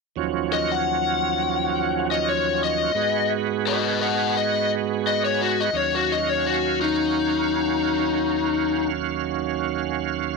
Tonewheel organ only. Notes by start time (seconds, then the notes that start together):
0.16 D#2 F3 F#3 C#4
2.94 G#2 G#3 B3 F#4
5.73 D#2 F#3 C#4 F5